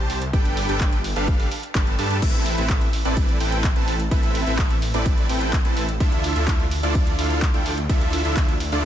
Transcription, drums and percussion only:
0.10 open hi-hat loud
0.22 closed hi-hat soft
0.33 kick loud
0.33 closed hi-hat medium
0.45 closed hi-hat soft
0.57 open hi-hat loud
0.69 closed hi-hat soft
0.81 kick loud
0.81 clap loud
0.81 closed hi-hat medium
0.93 closed hi-hat soft
1.04 open hi-hat loud
1.16 closed hi-hat soft
1.28 kick loud
1.28 closed hi-hat medium
1.40 open hi-hat medium
1.51 open hi-hat loud
1.63 closed hi-hat soft
1.75 kick loud
1.75 clap loud
1.75 closed hi-hat medium
1.87 closed hi-hat soft
1.99 open hi-hat loud
2.10 closed hi-hat soft
2.22 kick loud
2.22 closed hi-hat medium
2.22 crash loud
2.22 ride medium
2.34 closed hi-hat soft
2.46 open hi-hat loud
2.58 closed hi-hat soft
2.70 kick loud
2.70 clap loud
2.70 closed hi-hat medium
2.70 ride medium
2.81 closed hi-hat soft
2.93 open hi-hat loud
3.05 closed hi-hat soft
3.17 kick loud
3.17 closed hi-hat medium
3.17 ride medium
3.29 closed hi-hat soft
3.40 open hi-hat loud
3.52 closed hi-hat soft
3.64 kick loud
3.64 clap loud
3.64 closed hi-hat medium
3.64 ride medium
3.76 closed hi-hat soft
3.88 open hi-hat loud
4.00 closed hi-hat soft
4.11 kick loud
4.11 closed hi-hat medium
4.11 ride medium
4.23 closed hi-hat soft
4.35 open hi-hat loud
4.47 closed hi-hat soft
4.59 kick loud
4.59 clap loud
4.59 closed hi-hat medium
4.59 ride medium
4.70 closed hi-hat soft
4.82 open hi-hat loud
4.94 closed hi-hat soft
5.06 kick loud
5.06 closed hi-hat medium
5.06 ride medium
5.18 closed hi-hat soft
5.29 open hi-hat loud
5.41 closed hi-hat soft
5.53 kick loud
5.53 clap loud
5.53 closed hi-hat medium
5.53 ride medium
5.65 closed hi-hat soft
5.77 open hi-hat loud
5.89 closed hi-hat soft
6.00 kick loud
6.00 closed hi-hat medium
6.00 ride medium
6.12 closed hi-hat soft
6.24 open hi-hat loud
6.36 closed hi-hat soft
6.48 kick loud
6.48 clap loud
6.48 closed hi-hat medium
6.48 ride medium
6.60 closed hi-hat soft
6.71 open hi-hat loud
6.83 closed hi-hat soft
6.95 kick loud
6.95 closed hi-hat medium
6.95 ride medium
7.07 closed hi-hat soft
7.19 open hi-hat loud
7.30 closed hi-hat soft
7.42 kick loud
7.42 clap loud
7.42 closed hi-hat medium
7.42 ride medium
7.54 closed hi-hat soft
7.66 open hi-hat loud
7.78 closed hi-hat soft
7.89 kick loud
7.89 closed hi-hat medium
7.89 ride medium
8.01 closed hi-hat soft
8.13 open hi-hat loud
8.25 closed hi-hat soft
8.37 kick loud
8.37 clap loud
8.37 closed hi-hat medium
8.37 ride medium
8.49 closed hi-hat soft
8.60 open hi-hat loud
8.72 closed hi-hat soft

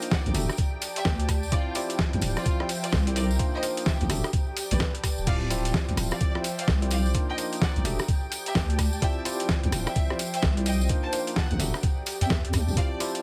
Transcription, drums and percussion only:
0.02 closed hi-hat medium
0.02 tambourine medium
0.11 kick loud
0.11 snare loud
0.11 tambourine soft
0.26 closed hi-hat soft
0.34 open hi-hat medium
0.34 tambourine medium
0.49 cross-stick medium
0.49 tambourine medium
0.57 kick loud
0.57 closed hi-hat medium
0.57 tambourine soft
0.82 open hi-hat loud
0.82 tambourine medium
0.96 closed hi-hat medium
0.96 tambourine medium
1.05 kick loud
1.05 snare loud
1.20 closed hi-hat medium
1.29 kick medium
1.29 cross-stick medium
1.29 open hi-hat medium
1.29 tambourine medium
1.43 tambourine medium
1.52 kick loud
1.52 closed hi-hat medium
1.75 open hi-hat loud
1.75 tambourine medium
1.90 closed hi-hat medium
1.90 tambourine medium
1.99 kick loud
1.99 snare loud
2.13 closed hi-hat soft
2.21 open hi-hat loud
2.21 tambourine medium
2.36 cross-stick medium
2.36 tambourine soft
2.46 kick loud
2.46 closed hi-hat medium
2.46 tambourine soft
2.60 cross-stick soft
2.69 open hi-hat loud
2.69 tambourine medium
2.84 closed hi-hat medium
2.84 tambourine medium
2.92 kick loud
2.92 snare loud
2.92 tambourine soft
3.07 closed hi-hat medium
3.16 open hi-hat loud
3.16 tambourine medium
3.31 tambourine medium
3.39 kick loud
3.39 closed hi-hat medium
3.63 open hi-hat loud
3.63 tambourine loud
3.77 closed hi-hat medium
3.77 tambourine medium
3.86 kick loud
3.86 snare loud
3.86 tambourine soft
4.01 closed hi-hat soft
4.10 cross-stick medium
4.10 open hi-hat loud
4.10 tambourine medium
4.24 cross-stick medium
4.24 tambourine soft
4.33 kick loud
4.33 closed hi-hat medium
4.33 tambourine soft
4.57 open hi-hat loud
4.57 tambourine medium
4.71 closed hi-hat medium
4.71 tambourine soft
4.80 kick loud
4.80 snare loud
4.80 tambourine soft
4.95 closed hi-hat medium
5.04 kick medium
5.04 cross-stick medium
5.04 open hi-hat loud
5.04 tambourine medium
5.18 tambourine medium
5.27 kick loud
5.27 closed hi-hat medium
5.27 tambourine soft
5.27 crash medium
5.50 open hi-hat loud
5.50 tambourine loud
5.65 closed hi-hat medium
5.65 tambourine medium
5.74 kick loud
5.74 snare loud
5.74 tambourine soft
5.89 closed hi-hat soft
5.97 cross-stick medium
5.97 open hi-hat loud
5.97 tambourine medium
6.11 cross-stick medium
6.11 tambourine soft
6.20 kick loud
6.20 closed hi-hat medium
6.20 tambourine soft
6.35 cross-stick medium
6.44 open hi-hat loud
6.44 tambourine loud
6.58 closed hi-hat medium
6.58 tambourine soft
6.68 kick loud
6.68 snare loud
6.68 tambourine soft
6.82 closed hi-hat medium
6.91 open hi-hat loud
6.91 tambourine medium
7.06 tambourine medium
7.14 kick loud
7.14 closed hi-hat medium
7.14 tambourine soft
7.38 open hi-hat loud
7.38 tambourine medium
7.53 closed hi-hat medium
7.53 tambourine medium
7.61 kick loud
7.61 snare loud
7.76 closed hi-hat soft
7.85 open hi-hat medium
7.85 tambourine medium
7.99 cross-stick medium
7.99 tambourine medium
8.08 kick loud
8.08 closed hi-hat medium
8.08 tambourine soft
8.32 open hi-hat loud
8.32 tambourine loud
8.46 closed hi-hat medium
8.46 tambourine medium
8.55 kick loud
8.55 snare loud
8.55 tambourine soft
8.70 closed hi-hat medium
8.79 kick medium
8.79 cross-stick medium
8.79 open hi-hat medium
8.79 tambourine loud
8.93 tambourine medium
9.02 kick loud
9.02 closed hi-hat medium
9.02 tambourine soft
9.25 open hi-hat loud
9.25 tambourine loud
9.39 closed hi-hat medium
9.39 tambourine medium
9.49 kick loud
9.49 snare loud
9.49 tambourine soft
9.63 closed hi-hat soft
9.72 cross-stick medium
9.72 open hi-hat medium
9.72 tambourine medium
9.87 cross-stick medium
9.87 tambourine medium
9.96 kick loud
9.96 closed hi-hat medium
9.96 tambourine soft
10.10 cross-stick medium
10.19 open hi-hat loud
10.19 tambourine loud
10.34 closed hi-hat medium
10.34 tambourine medium
10.43 kick loud
10.43 snare loud
10.57 closed hi-hat medium
10.66 open hi-hat medium
10.66 tambourine loud
10.81 tambourine medium
10.89 kick loud
10.89 closed hi-hat medium
10.89 tambourine soft
11.13 open hi-hat loud
11.13 tambourine medium
11.27 closed hi-hat medium
11.27 tambourine soft
11.36 kick loud
11.36 snare loud
11.51 closed hi-hat soft
11.60 open hi-hat medium
11.60 tambourine loud
11.74 cross-stick medium
11.74 tambourine medium
11.83 kick loud
11.83 closed hi-hat medium
11.83 tambourine soft
12.06 open hi-hat loud
12.06 tambourine medium
12.21 closed hi-hat medium
12.21 tambourine medium
12.30 kick loud
12.30 snare loud
12.30 tambourine soft
12.45 closed hi-hat medium
12.53 kick medium
12.53 cross-stick medium
12.53 open hi-hat medium
12.53 tambourine medium
12.68 tambourine medium
12.77 kick loud
12.77 closed hi-hat medium
12.77 tambourine soft
13.00 open hi-hat loud
13.00 tambourine medium
13.15 closed hi-hat medium
13.15 tambourine medium

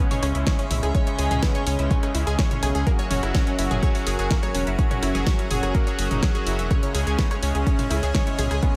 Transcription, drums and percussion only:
0.11 mid tom medium
0.11 open hi-hat medium
0.23 cross-stick medium
0.23 open hi-hat loud
0.35 closed hi-hat medium
0.47 kick loud
0.47 snare loud
0.47 closed hi-hat medium
0.59 closed hi-hat medium
0.71 mid tom loud
0.71 open hi-hat loud
0.83 cross-stick soft
0.83 closed hi-hat medium
0.95 kick loud
0.95 closed hi-hat medium
1.07 closed hi-hat medium
1.19 open hi-hat loud
1.31 closed hi-hat medium
1.31 mid tom medium
1.43 kick loud
1.43 cross-stick soft
1.43 snare loud
1.43 closed hi-hat medium
1.55 closed hi-hat medium
1.67 open hi-hat loud
1.79 closed hi-hat medium
1.91 kick loud
1.91 closed hi-hat medium
1.91 mid tom medium
2.03 cross-stick medium
2.03 closed hi-hat medium
2.15 open hi-hat loud
2.27 closed hi-hat medium
2.39 kick loud
2.39 snare loud
2.39 closed hi-hat medium
2.51 closed hi-hat medium
2.51 mid tom medium
2.63 cross-stick medium
2.63 open hi-hat loud
2.75 closed hi-hat medium
2.87 kick loud
2.87 closed hi-hat medium
2.99 closed hi-hat medium
3.11 mid tom medium
3.11 open hi-hat loud
3.23 cross-stick medium
3.23 closed hi-hat medium
3.35 kick loud
3.35 snare loud
3.35 closed hi-hat medium
3.47 closed hi-hat medium
3.59 open hi-hat loud
3.71 closed hi-hat medium
3.71 mid tom medium
3.83 kick loud
3.83 cross-stick medium
3.83 closed hi-hat medium
3.95 open hi-hat medium
4.07 open hi-hat loud
4.19 closed hi-hat medium
4.31 kick loud
4.31 snare loud
4.31 closed hi-hat medium
4.31 mid tom medium
4.43 cross-stick soft
4.43 closed hi-hat medium
4.55 open hi-hat loud
4.67 closed hi-hat medium
4.79 kick loud
4.79 closed hi-hat medium
4.91 closed hi-hat medium
4.91 mid tom medium
5.03 cross-stick medium
5.03 open hi-hat loud
5.15 snare soft
5.15 closed hi-hat medium
5.27 kick loud
5.27 snare loud
5.27 closed hi-hat medium
5.39 closed hi-hat medium
5.51 mid tom medium
5.51 open hi-hat loud
5.63 cross-stick medium
5.63 closed hi-hat medium
5.75 kick loud
5.75 closed hi-hat medium
5.87 closed hi-hat medium
5.99 open hi-hat loud
6.11 closed hi-hat medium
6.11 mid tom medium
6.23 kick loud
6.23 cross-stick medium
6.23 snare loud
6.23 closed hi-hat medium
6.35 closed hi-hat medium
6.47 open hi-hat loud
6.59 closed hi-hat medium
6.71 kick loud
6.71 cross-stick medium
6.71 closed hi-hat medium
6.83 closed hi-hat medium
6.95 open hi-hat loud
7.07 closed hi-hat medium
7.19 kick loud
7.19 snare loud
7.19 closed hi-hat medium
7.19 mid tom medium
7.31 cross-stick medium
7.31 closed hi-hat medium
7.43 open hi-hat loud
7.55 closed hi-hat medium
7.67 kick loud
7.67 closed hi-hat medium
7.79 mid tom medium
7.79 open hi-hat medium
7.91 cross-stick medium
7.91 open hi-hat loud
8.03 closed hi-hat medium
8.15 kick loud
8.15 snare loud
8.15 closed hi-hat medium
8.27 closed hi-hat medium
8.39 mid tom medium
8.39 open hi-hat loud
8.51 cross-stick medium
8.51 closed hi-hat medium
8.63 kick loud
8.63 closed hi-hat medium

